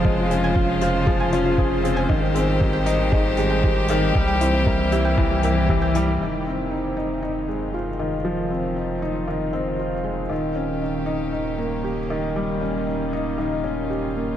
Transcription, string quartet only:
0.00 2.06 C#3 medium
0.00 2.06 F3 medium
0.00 4.11 G#3 medium
0.00 2.06 F4 medium
0.00 6.16 C5 medium
2.09 4.13 D#3 medium
2.09 6.16 G3 medium
2.09 6.16 G4 loud
4.15 6.19 E3 medium
4.15 6.18 A#3 medium
6.20 14.37 D#3 medium
6.20 10.27 F3 medium
6.20 10.27 G#3 medium
6.20 10.27 C4 medium
6.20 10.27 F4 medium
10.30 14.37 G3 medium
10.30 14.37 A#3 medium
10.30 14.37 C#4 medium
10.30 12.34 G4 medium
12.35 14.37 F4 medium

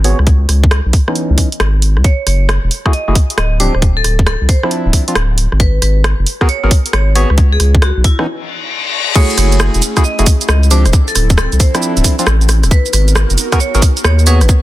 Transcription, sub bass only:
0.00 0.14 G#1 medium
0.19 0.46 C#2 medium
0.49 0.80 C#2 medium
0.86 0.92 B1 loud
1.30 1.36 C#2 medium
1.60 1.98 G#1 medium
1.97 2.03 C#2 medium
2.27 2.58 F#1 loud
2.64 2.69 E1 loud
3.08 3.14 F#1 medium
3.38 3.69 D1 medium
3.74 4.02 D1 medium
4.04 4.36 D1 loud
4.41 4.47 C2 loud
4.86 4.92 D1 loud
5.16 5.47 D1 medium
5.52 5.79 G#1 medium
5.82 6.14 G#1 loud
6.19 6.25 F#1 loud
6.63 6.69 G#1 medium
6.93 7.25 G#1 medium
7.30 7.57 C#2 loud
7.60 7.92 C#2 loud
7.97 8.03 B1 loud
9.38 9.69 F#1 loud
9.75 9.80 E1 loud
10.19 10.25 F#1 medium
10.49 10.87 C#2 medium
10.86 10.92 D1 medium
11.15 11.47 D1 loud
11.52 11.58 C2 loud
11.97 12.03 D1 loud
12.27 12.65 A1 medium
12.64 12.69 D1 medium
12.93 13.25 G#1 loud
13.30 13.36 F#1 loud
13.75 13.80 G#1 loud
14.04 14.43 D#2 medium
14.41 14.47 G#1 medium

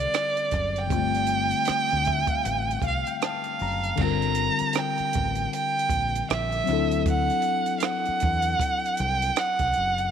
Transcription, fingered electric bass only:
0.53 0.92 F#1 medium
0.92 1.52 G1 medium
1.69 muted fingered electric bass stroke soft
1.93 2.23 D2 medium
2.46 2.76 A1 medium
2.83 3.02 C2 medium
3.61 3.91 F#1 medium
3.99 4.48 G1 loud
4.61 muted fingered electric bass stroke soft
5.00 muted fingered electric bass stroke soft
5.17 5.46 A1 medium
5.90 6.21 A#1 medium
6.30 6.60 A#1 medium
6.68 7.29 D2 medium
8.08 muted fingered electric bass stroke soft
8.24 8.53 E2 medium
9.00 9.30 C2 medium
9.61 9.72 C2 medium
9.77 10.11 F#1 medium

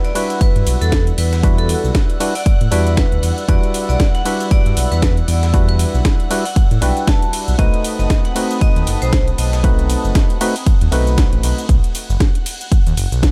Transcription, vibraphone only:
0.04 0.28 D5 medium
0.41 0.65 B4 medium
0.81 1.05 A4 medium
1.18 1.42 B4 loud
1.58 1.82 A4 loud
2.35 2.59 D5 loud
2.72 2.89 D5 medium
2.97 3.30 B4 loud
3.49 3.73 D5 loud
3.89 4.03 D5 medium
4.15 4.38 F#5 medium
4.51 4.75 D5 loud
4.92 5.15 B4 loud
5.28 5.52 D5 loud
5.69 5.92 B4 medium
6.45 6.69 F#5 loud
6.82 6.99 G5 medium
7.08 7.40 A5 loud
7.59 7.83 D#5 loud
7.99 8.14 D#5 medium
8.25 8.48 F#5 medium
8.61 8.85 D#5 loud
9.02 9.25 C5 medium
9.38 9.62 D#5 loud

